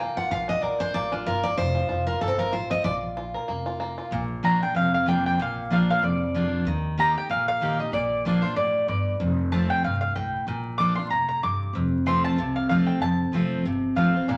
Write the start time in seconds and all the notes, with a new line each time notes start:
Already playing: F1 F4
0.00 A#3 G5
0.17 F4 F#5
0.30 A#1 F4 F5
0.48 D4 D#5
0.63 A#1 A#4 D5
0.80 D4 C5
0.94 A1 A#3 D5
1.12 D4 F4
1.26 G1 F4 A#4
1.43 A#3 D5
1.57 F1 F4 C5
1.75 F4
1.89 F1 F4
2.07 F4 A#4
2.21 G1 A#3 A4
2.28 C4
2.38 F4 A#4
2.52 A1 F4 C5
2.70 C4 D#5
2.84 A#1 F4 D5
3.17 F4
3.34 A#4
3.48 F1 A#3
3.66 F4
3.80 A#3
3.98 F4
4.11 A#1 A#2
4.43 F3 A#3 D4 F4 A#5
4.61 D4 F4 G5
4.75 F1 F2 F5
4.94 F5
5.06 F3 A#3 D4 F4 G5
5.26 G5
5.38 A#1 A#2 F5
5.70 F3 A#3 D4 F4 F5
5.90 F5
6.02 F1 F2 D5
6.34 F3 A#3 D4 F4
6.65 D#2 D#3
6.97 D#3 A#3 D#4 G4 A#5
7.15 D#4 G4 G5
7.29 A#1 A#2 F5
7.48 F5
7.61 D#3 A#3 D#4 G4
7.79 D#4 G4 D#5
7.92 A#1 A#2 D5
8.25 F3 A#3 D4 F4
8.42 D4 F4 C5
8.56 A1 A2 D5
8.88 G1 G2 D5
9.20 F1 F2
9.52 F3 A3 C4 F4 A5
9.70 G5
9.84 C2 G2 F5
10.01 F5
10.16 A2 G5
10.47 A#1 A#2
10.78 F3 A#3 D4 F4 D6
10.96 D4 F4 C6
11.10 F1 A2 A#5
11.29 A#5
11.43 G2 D6
11.73 F1 F2
12.06 F3 A3 C4 F4 C6
12.24 A5
12.37 C2 C3
12.56 F5
12.69 F3 A3 C4 F4 F5
12.87 G5
13.00 F1 F2 A5
13.32 F1 F3 A3 C4 F4
13.64 G1 C3
13.95 A1 F3 A3 C4 F4 F5
14.14 C4 F4
14.28 A#1 A#2 D4 F5